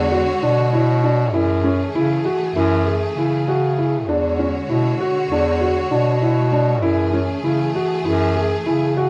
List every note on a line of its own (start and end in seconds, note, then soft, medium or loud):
0.00 0.30 E2 loud
0.00 1.31 D3 medium
0.00 1.31 G#3 medium
0.00 1.30 F#4 medium
0.00 1.31 C#5 medium
0.12 0.35 F#4 medium
0.42 1.36 B2 loud
0.42 0.66 D4 medium
0.73 0.97 E4 medium
1.04 1.27 D4 medium
1.33 1.84 F#2 loud
1.33 4.06 E3 medium
1.33 4.06 A3 medium
1.33 1.57 E4 medium
1.33 4.06 G#4 medium
1.64 1.88 C#4 medium
1.95 2.20 C#3 loud
1.95 2.19 E4 loud
2.25 2.49 F#4 medium
2.55 3.05 F#2 loud
2.55 2.80 E4 medium
2.87 3.11 G#4 medium
3.17 4.09 C#3 medium
3.17 3.41 E4 medium
3.48 3.71 F#4 medium
3.78 4.02 E4 medium
4.07 4.58 E2 loud
4.07 6.80 D3 medium
4.07 6.80 G#3 medium
4.07 4.32 D4 medium
4.07 6.80 F#4 medium
4.07 6.80 C#5 medium
4.39 4.63 C#4 medium
4.69 4.94 B2 loud
4.69 4.93 E4 medium
5.00 5.24 F#4 medium
5.30 5.80 E2 loud
5.30 5.55 D4 medium
5.61 5.85 F#4 medium
5.91 6.84 B2 loud
5.91 6.15 D4 medium
6.22 6.46 E4 medium
6.52 6.76 D4 medium
6.82 7.33 F#2 loud
6.82 9.10 E3 medium
6.82 9.10 A3 medium
6.82 7.06 E4 loud
6.82 9.10 G#4 medium
7.13 7.37 C#4 medium
7.44 7.69 C#3 loud
7.44 7.68 E4 medium
7.75 7.99 F#4 medium
8.05 8.55 F#2 loud
8.05 8.28 E4 medium
8.36 8.59 G#4 medium
8.66 9.10 C#3 medium
8.66 8.90 E4 medium
8.97 9.10 F#4 medium